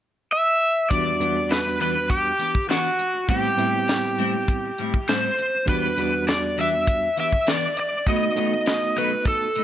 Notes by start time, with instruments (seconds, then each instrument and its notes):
0.32 electric slide guitar E5
0.90 reed electric piano E2 G3 B3 D4 F#4, clean electric guitar E3 B3 D4 G4, electric slide guitar D5, kick, closed hi-hat
1.19 reed electric piano E2 G3 B3 D4 F#4, clean electric guitar E3 B3 D4 G4, closed hi-hat
1.36 muted clean electric guitar stroke
1.50 electric slide guitar B4, muted clean electric guitar stroke, snare, closed hi-hat
1.65 muted clean electric guitar stroke
1.80 clean electric guitar E3 B3 D4 G4, electric slide guitar B4, closed hi-hat
1.94 muted clean electric guitar stroke
2.10 electric slide guitar G4, kick, closed hi-hat
2.24 muted clean electric guitar stroke
2.38 clean electric guitar E3 B3 D4 G4, closed hi-hat
2.55 muted clean electric guitar stroke, kick
2.68 clean electric guitar E3 B3 D4 G4, electric slide guitar F#4, snare, closed hi-hat
2.98 muted clean electric guitar stroke, closed hi-hat
3.14 muted clean electric guitar stroke
3.28 clean electric guitar A2 G3 C4 E4, reed electric piano A2 G3 B3 C4 E4, electric slide guitar G4, kick, closed hi-hat
3.57 reed electric piano A2 G3 B3 C4 E4, clean electric guitar A2 G3 C4 E4, closed hi-hat
3.73 muted clean electric guitar stroke
3.88 muted clean electric guitar stroke, snare, closed hi-hat
4.03 muted clean electric guitar stroke
4.18 clean electric guitar A2 G3 C4 E4, closed hi-hat
4.34 muted clean electric guitar stroke
4.48 kick, closed hi-hat
4.64 muted clean electric guitar stroke
4.78 clean electric guitar A2 G3 C4 E4, closed hi-hat
4.94 muted clean electric guitar stroke, kick
5.08 clean electric guitar A2 G3 C4 E4, electric slide guitar C5, snare, closed hi-hat
5.38 muted clean electric guitar stroke, closed hi-hat
5.54 muted clean electric guitar stroke
5.66 reed electric piano E2 G3 B3 D4 F#4, clean electric guitar E3 B3 D4 G4, electric slide guitar B4, kick, closed hi-hat
5.97 reed electric piano E2 G3 B3 D4 F#4, clean electric guitar E3 B3 D4 G4, closed hi-hat
6.13 muted clean electric guitar stroke
6.27 electric slide guitar D5, muted clean electric guitar stroke, snare, closed hi-hat
6.43 muted clean electric guitar stroke
6.57 clean electric guitar E3 B3 D4 G4, electric slide guitar E5, closed hi-hat
6.73 muted clean electric guitar stroke
6.87 kick, closed hi-hat
7.02 muted clean electric guitar stroke
7.17 clean electric guitar E3 B3 D4 G4, electric slide guitar E5, closed hi-hat
7.32 muted clean electric guitar stroke, kick
7.47 clean electric guitar E3 B3 D4 G4, electric slide guitar D5, snare, closed hi-hat
7.76 electric slide guitar D5, muted clean electric guitar stroke, closed hi-hat
7.92 muted clean electric guitar stroke
8.06 clean electric guitar B2 F#3 A3 D#4, reed electric piano A3 B3 D#4 F#4, electric slide guitar D#5, kick, closed hi-hat
8.36 clean electric guitar B2 F#3 A3 D#4, reed electric piano A3 B3 D#4 F#4, closed hi-hat
8.52 muted clean electric guitar stroke
8.66 muted clean electric guitar stroke, snare, closed hi-hat
8.83 muted clean electric guitar stroke
8.96 clean electric guitar B2 F#3 A3 D#4, electric slide guitar B4, closed hi-hat
9.12 muted clean electric guitar stroke
9.25 electric slide guitar A4, kick, closed hi-hat
9.41 muted clean electric guitar stroke
9.55 clean electric guitar B2 F#3 A3 D#4, closed hi-hat